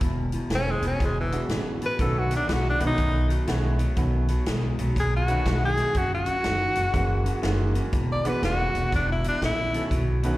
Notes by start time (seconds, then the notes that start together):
0.01 E1 E2 B2, kick, closed hi-hat
0.32 E2 B2, closed hi-hat
0.50 E1 E2 C#3, snare, closed hi-hat
0.55 C#4
0.71 G#3
0.82 E1 E2 B2, closed hi-hat
0.87 C#4
1.00 E1 E2 B2, kick, snare, closed hi-hat
1.05 G#3
1.20 E3
1.32 E2 B2 E3 G#3 B3 D4 F#4, closed hi-hat
1.49 A1 E2 C#3, snare, closed hi-hat
1.81 E2 B2, closed hi-hat
1.86 B4
1.99 B1 B2 D#3 F#3 A3 B3 C#4 F#4 A4, kick, closed hi-hat
2.19 F#4
2.31 B2 F#3, closed hi-hat
2.36 D4
2.48 B1 B2 G#3, snare, closed hi-hat
2.53 F#4
2.70 D4
2.79 B1 B2 D#3 F#3 A3 B3 C#4 F#4, closed hi-hat
2.87 D#4
2.97 B1 B2 F#3, kick, closed hi-hat
3.28 B2 F#3, closed hi-hat
3.47 B1 B2 D#3 G#3 A3 B3 C#4 F#4, snare, closed hi-hat
3.79 B2 F#3, closed hi-hat
3.96 B1 B2 D#3 F#3 A3 B3 C#4 F#4, kick, closed hi-hat
4.28 B2 F#3, closed hi-hat
4.46 B1 B2 G#3, snare, closed hi-hat
4.79 B1 B2 F#3, closed hi-hat
4.96 B1 B2 F#3, kick, closed hi-hat
5.00 G#4
5.16 F#4
5.28 B2 D#3 F#3 A3 B3 C#4 F#4, closed hi-hat
5.46 B1 B2 G#3, kick, snare, closed hi-hat
5.65 G#4
5.77 B2 F#3, closed hi-hat
5.94 F#1 F#2 C#3 F#4, kick, closed hi-hat
6.14 F#4
6.26 F#2 C#3, closed hi-hat
6.44 F#1 F#2 D#3, snare, closed hi-hat
6.75 F#1 F#2 C#3, closed hi-hat
6.93 F#1 F#2 C#3 E3 G#3 A#3 C#4 F#4, kick, closed hi-hat
7.25 F#2 C#3, closed hi-hat
7.42 F#1 F#2 D#3 E3 G#3 A#3 C#4 F#4, snare, closed hi-hat
7.75 F#2 C#3, closed hi-hat
7.93 E1 E2 B2, kick, closed hi-hat
8.12 D5
8.25 E2 B2 E3 G#3 B3 D4 F#4 B4, closed hi-hat
8.43 E1 E2 C#3 F#4, snare, closed hi-hat
8.74 E1 E2 B2, closed hi-hat
8.92 E1 E2 B2 D4, kick, snare, closed hi-hat
9.12 E4
9.24 E2 B2 D4, closed hi-hat
9.42 A#1 E2 C#3 E4, snare, closed hi-hat
9.73 E2 B2 D#3 A3 B3 C#4 A4, closed hi-hat
9.90 B1 B2 F#3, kick, closed hi-hat
10.23 B2 D#3 F#3 A3 B3 C#4 F#4, closed hi-hat